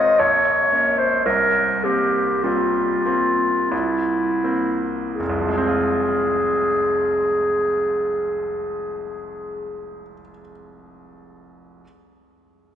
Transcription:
Already playing: grand piano G#1 G#3 C4 F4, clarinet D#5
0.19 grand piano A#1, clarinet C#5
0.72 grand piano A#3 C#4
0.98 clarinet C5
1.26 grand piano C2, clarinet A#4
1.84 grand piano A#3 C4, clarinet G4
2.44 grand piano G3 A#3 C4, clarinet F4
3.06 grand piano A#3 C4
3.70 grand piano C2, clarinet E4
4.44 grand piano A#3 C4
5.15 clarinet G#4
5.20 grand piano F1
5.30 grand piano C2
5.39 grand piano F3
5.48 grand piano G#3
5.58 grand piano C4
5.67 grand piano F4

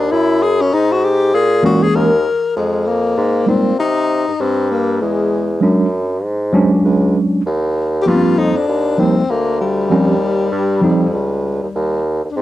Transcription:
0.00 tenor saxophone D4
0.11 bassoon F#2, tenor saxophone E4
0.42 tenor saxophone G#4
0.61 tenor saxophone C#4
0.73 bassoon G#2, tenor saxophone D#4
0.92 tenor saxophone F#4
1.04 tenor saxophone G4
1.34 bassoon A#2, tenor saxophone G#4
1.63 tine electric piano E3 G#3 A#3 C#4, tenor saxophone F#4
1.83 bassoon D#2, tenor saxophone G#4
1.95 bassoon D#2, tenor saxophone A#4
2.56 bassoon F2, tenor saxophone G#3
2.87 tenor saxophone A#3
3.17 bassoon G#2
3.46 bassoon A#2, tine electric piano G3 G#3 A#3 D#4, tenor saxophone C4
3.78 bassoon C3, tenor saxophone D#4
4.28 bassoon G2
4.40 bassoon G2, tenor saxophone C4
4.71 tenor saxophone A#3
5.01 bassoon E2, tenor saxophone G#3
5.61 bassoon F#2, tine electric piano F#3 G#3 C#4 D4
6.24 bassoon G#2
6.53 tine electric piano F#3 G#3 C#4 D4
6.73 bassoon C#2
6.85 bassoon C#2
7.46 bassoon D#2
8.02 tine electric piano F3, tenor saxophone G4
8.06 bassoon G2, tine electric piano G3 A#3 B3, tenor saxophone F4
8.14 tine electric piano C4
8.38 bassoon F2, tenor saxophone D#4
8.57 tenor saxophone D4
8.68 bassoon D#2
8.97 tine electric piano F3 G3 A#3 D#4, tenor saxophone C4
9.18 bassoon D2
9.29 bassoon D2, tenor saxophone A#3
9.61 tenor saxophone G3
9.90 bassoon D#2, tine electric piano F3 G3 C4 C#4
10.52 bassoon G2
10.81 bassoon F2, tine electric piano F3 G3 C4 D#4
11.13 bassoon C#2
11.63 bassoon D#2
11.75 bassoon D#2
12.24 bassoon D#2
12.31 tenor saxophone D4
12.36 bassoon G#2, tenor saxophone C4

